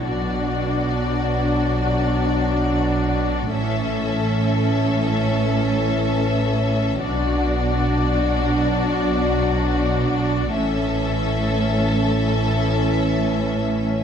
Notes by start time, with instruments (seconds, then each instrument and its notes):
0.02 double bass section B1, cello section B2, french horn section F#3 D4, viola section D4, violin section F#4 D5
3.53 double bass section A1, cello section A2, french horn section E3 C#4, viola section C#4, violin section A4 E5
7.03 double bass section B1, cello section B2, french horn section F#3 D4, viola section D4, violin section F#4 D5
10.54 double bass section A1, cello section A2, french horn section E3 C#4, viola section C#4, violin section A4 E5